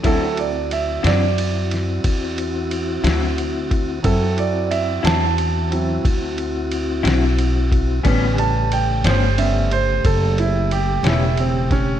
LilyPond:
<<
  \new Staff \with { instrumentName = "Grand piano" } { \time 12/8 \key d \major \tempo 4. = 60 << { a'8 d''8 e''8 d''2 r2 r8 | a'8 d''8 e''8 a''2 r2 r8 | r8 a''8 g''8 c''8 e''8 c''8 a'8 e'8 g'8 e'8 c'8 cis'8 | } \\ { <fis c' e'>8 r1 r4. | <fis c' e'>4. r4 <fis c' e'>8 r2. | <g cis' b'>2 <g b cis'>8 r2. r8 | } >> }
  \new Staff \with { instrumentName = "Tonewheel organ" } { \time 12/8 \key d \major <c' e' fis'>1. | <c' e' fis'>1. | <d b gis''>8 <cis a g'>1~ <cis a g'>4. | }
  \new Staff \with { instrumentName = "Clean electric guitar" } { \time 12/8 \key d \major <d fis c' e'>8 r4 <d fis c' e'>8 r2 r8 <d fis c' e'>8 r4 | r4. <d fis c' e'>8 r2 r8 <d fis c' e'>8 r4 | <a, g b cis'>8 r4 <a, g b cis'>8 r2 r8 <a, g b cis'>8 r4 | }
  \new Staff \with { instrumentName = "Upright bass" } { \clef bass \time 12/8 \key d \major d,4. fis,4. e,4. d,4. | fis,4. e,4. d,4. b,,4. | a,,4. g,,4. fis,,4. e,,4. | }
  \new DrumStaff \with { instrumentName = "Drums" } \drummode { \time 12/8 <bd cymr>8 cymr8 cymr8 <cymr sn>8 cymr8 <cymr sn>8 <bd cymr>8 cymr8 cymr8 <cymr sn>8 cymr8 <bd cymr>8 | <bd cymr>8 cymr8 cymr8 <cymr sn>8 cymr8 cymr8 <bd cymr>8 cymr8 cymr8 <cymr sn>8 cymr8 <bd cymr>8 | <bd cymr>8 cymr8 cymr8 <cymr sn>8 cymr8 cymr8 <bd cymr>8 cymr8 cymr8 <cymr sn>8 cymr8 <bd cymr sn>8 | }
>>